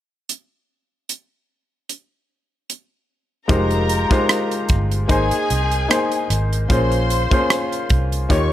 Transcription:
0.29 closed hi-hat
1.09 closed hi-hat
1.89 closed hi-hat
2.70 closed hi-hat
3.48 fingered electric bass F1, grand piano G#3 D#4 F4 G4 C5, string section A#4 A#5, kick, closed hi-hat
3.71 closed hi-hat
3.89 closed hi-hat
4.10 grand piano G#3 D#4 F4 G4 C5, muted fingered electric bass stroke, kick, cross-stick, closed hi-hat
4.29 cross-stick, closed hi-hat
4.51 closed hi-hat
4.69 fingered electric bass G1, kick, closed hi-hat
4.92 closed hi-hat
5.08 fingered electric bass G#1, grand piano A#3 D#4 G#4 C5, string section G#4 G#5, kick, closed hi-hat
5.31 muted fingered electric bass stroke, closed hi-hat
5.50 fingered electric bass C2, closed hi-hat
5.71 closed hi-hat
5.88 grand piano A#3 D#4 G#4 C5, cross-stick, closed hi-hat
6.12 closed hi-hat
6.30 fingered electric bass G#1, cross-stick, closed hi-hat
6.53 closed hi-hat
6.68 fingered electric bass A#1, grand piano A#3 C#4 F4 G#4 C5, string section C5 C6, kick, closed hi-hat
6.92 closed hi-hat
7.10 closed hi-hat
7.30 grand piano A#3 C#4 F4 G#4 C5, kick, closed hi-hat
7.50 cross-stick, closed hi-hat
7.72 closed hi-hat
7.89 fingered electric bass C2, kick, closed hi-hat
8.12 closed hi-hat
8.29 fingered electric bass D#2, grand piano A#3 D#4 F4 G4 C#5, string section C#5 C#6, kick, closed hi-hat

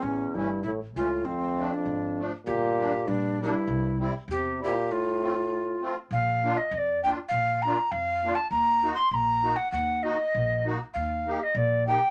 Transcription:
0.02 upright bass A1, euphonium E2, recorder C#4
0.34 upright bass G1, euphonium G2, accordion E3 A3 C#4, recorder E4
0.63 upright bass A1, euphonium A2, recorder E4
0.95 upright bass C#2, accordion E3 A3 C#4, recorder F4
0.99 euphonium A2
1.24 upright bass D2, euphonium F2, recorder C4
1.56 accordion F3 A3 D4
1.74 euphonium F2, recorder D4
1.85 upright bass G#1
2.18 accordion F3 A3 D4
2.46 upright bass G1, euphonium A#2, recorder G4
2.79 accordion G3 A#3 D4
3.07 upright bass A#1, euphonium G2, recorder D4
3.40 euphonium G2, accordion G3 A#3 D4, recorder E4
3.67 upright bass C2
3.99 accordion G3 C4 E4
4.28 upright bass E2, euphonium C3, recorder G4
4.59 accordion G3 C4 E4
4.63 euphonium A#2, recorder G4
4.91 euphonium A2, recorder F4
5.21 accordion A3 C4 F4
5.81 accordion A3 C4 F4
6.11 upright bass A#1, recorder F5
6.44 accordion A#3 D4 F4
6.57 recorder D#5
6.71 upright bass F2, recorder D#5
6.78 recorder D5
7.03 accordion A#3 D4 F4, recorder G5
7.29 upright bass A#1, recorder F5
7.62 accordion A#3 D4, recorder A#5
7.67 accordion F4
7.91 upright bass F2, recorder F5
8.24 accordion A#3 D4 F4
8.35 recorder A5
8.51 upright bass D#2, recorder A#5
8.83 accordion A#3 D#4 F#4
8.95 recorder C6
9.09 upright bass A#1, recorder C6
9.14 recorder A#5
9.42 accordion A#3 D#4 F#4
9.56 recorder F#5
9.72 upright bass D#2, recorder F#5
10.03 accordion A#3 D#4 F#4, recorder D#5
10.35 upright bass A#1
10.65 accordion A#3 D#4 F#4
10.94 upright bass D#2, recorder F5
11.26 accordion A#3 D#4 G4
11.43 recorder D#5
11.55 upright bass A#1, recorder D5
11.86 accordion A#3 D#4 G4, recorder G5

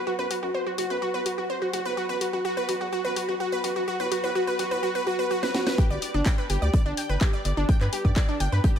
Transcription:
0.07 synth pluck F#4
0.19 analog synth bass F#2, synth pluck B4
0.31 synth pluck F#4, open hi-hat
0.43 analog synth bass F#2, synth pluck F#4
0.54 synth pluck C5
0.67 synth pluck F#4
0.78 analog synth bass F#1, synth pluck F#4, open hi-hat
0.90 analog synth bass F#2, synth pluck B4
1.02 synth pluck F#4
1.14 analog synth bass D1, synth pluck B4
1.26 synth pluck F#4, open hi-hat
1.38 analog synth bass D1, synth pluck F#4
1.50 synth pluck C5
1.62 synth pluck F#4
1.73 analog synth bass F#1, synth pluck F#4, open hi-hat
1.85 analog synth bass F#1, synth pluck B4
1.97 synth pluck F#4
2.09 analog synth bass A1, synth pluck B4
2.21 synth pluck F#4, open hi-hat
2.33 analog synth bass A1, synth pluck F#4
2.45 synth pluck F#4
2.57 synth pluck B4
2.69 analog synth bass A1, synth pluck F#4, open hi-hat
2.81 analog synth bass E2, synth pluck F#4
2.93 synth pluck F#4
3.05 analog synth bass A1, synth pluck B4
3.16 synth pluck F#4, open hi-hat
3.29 analog synth bass A1, synth pluck F#4
3.40 synth pluck F#4
3.52 synth pluck B4
3.64 analog synth bass A1, synth pluck F#4, open hi-hat
3.76 analog synth bass A1, synth pluck F#4
3.88 synth pluck F#4
4.00 analog synth bass A2, synth pluck B4
4.12 synth pluck F#4, open hi-hat
4.24 analog synth bass A2, synth pluck B4
4.35 synth pluck F#4
4.47 synth pluck B4
4.59 analog synth bass A1, synth pluck F#4, open hi-hat
4.71 analog synth bass A2, synth pluck B4
4.83 synth pluck F#4
4.95 synth pluck B4
5.07 synth pluck F#4
5.19 synth pluck B4
5.31 synth pluck F#4
5.43 synth pluck B4, snare
5.54 synth pluck F#4, snare
5.67 synth pluck B4, snare
5.78 synth pluck G4 G5, kick, closed hi-hat
5.90 analog synth bass G1, synth pluck D5 D6, closed hi-hat
6.02 synth pluck D5 D6, closed hi-hat, open hi-hat
6.14 analog synth bass G1, synth pluck D4 D5
6.26 synth pluck G5 G6, kick, snare, clap, closed hi-hat
6.38 synth pluck B4 B5
6.50 analog synth bass G1, synth pluck G4 G5, closed hi-hat, open hi-hat
6.62 analog synth bass D2, synth pluck D5 D6
6.73 synth pluck D5 D6, kick, closed hi-hat
6.86 analog synth bass G1, synth pluck D4 D5
6.97 synth pluck G5 G6, closed hi-hat, open hi-hat
7.09 analog synth bass G1, synth pluck B4 B5
7.20 synth pluck G4 G5, kick, snare, clap, closed hi-hat
7.33 synth pluck D5 D6
7.45 analog synth bass G1, synth pluck D5 D6, closed hi-hat, open hi-hat
7.57 analog synth bass G1, synth pluck D4 D5
7.69 synth pluck G5 G6, kick, closed hi-hat
7.81 analog synth bass G2, synth pluck B4 B5, clap
7.92 synth pluck G4 G5, closed hi-hat, open hi-hat
8.05 analog synth bass G2, synth pluck D5 D6, kick
8.16 synth pluck D5 D6, kick, snare, clap, closed hi-hat
8.29 synth pluck D4 D5
8.40 analog synth bass G1, synth pluck G5 G6, closed hi-hat, open hi-hat
8.52 analog synth bass G2, synth pluck B4 B5, snare
8.64 synth pluck G4 G5, kick, closed hi-hat
8.76 synth pluck D6

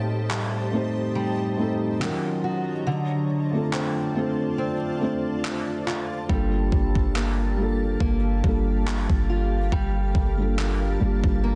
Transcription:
Already playing: steel-string acoustic guitar A2, felt piano A3 C4 D#4 G4 A4, ambient pad G4 C5 D#5 A5
0.30 steel-string acoustic guitar G3, clap
0.71 felt piano A3 C4 D#4 G4
0.76 felt piano C5
1.15 steel-string acoustic guitar G3
1.57 felt piano A3 C4 D#4 G4
1.62 felt piano A4
2.00 steel-string acoustic guitar D#3, felt piano F#3 C#4 D#4 F4, ambient pad F#3 C#5 D#5 A#5, clap
2.04 felt piano A#4
2.44 steel-string acoustic guitar F#4
2.87 steel-string acoustic guitar D3, ambient pad F4 C5 D5 A5
3.51 felt piano A3 C4 D4 F4
3.56 felt piano A4
3.73 steel-string acoustic guitar C4, clap
4.14 felt piano A3 C4 D4 F4
4.19 felt piano A4
4.58 steel-string acoustic guitar C4
5.00 felt piano A3 C4 D4 F4
5.04 felt piano C5
5.45 clap
5.87 steel-string acoustic guitar F4, clap
6.28 808-style bass G1, felt piano G3 A#3 D4 F4, steel-string acoustic guitar G3, ambient pad A#3 G4 F5, kick
6.33 felt piano A4
6.72 808-style bass G1, kick
6.95 kick
7.15 steel-string acoustic guitar A#3, clap
7.57 felt piano G3 A#3 D4 F4
7.61 felt piano A4
8.00 808-style bass G1, steel-string acoustic guitar A#3, kick
8.43 808-style bass G1, felt piano G3 A#3 D4 F4, kick
8.47 felt piano A4
8.88 clap
9.10 808-style bass G1, kick
9.30 steel-string acoustic guitar F4
9.72 808-style bass G1, steel-string acoustic guitar G3, ambient pad A5, kick
10.15 808-style bass G1, kick
10.37 felt piano G3 A#3 D4 F4
10.42 felt piano A4
10.58 steel-string acoustic guitar A#3, clap
10.99 808-style bass G1, felt piano G3 A#3 D4 F4
11.04 felt piano G4
11.24 808-style bass G1, kick
11.44 steel-string acoustic guitar A#3

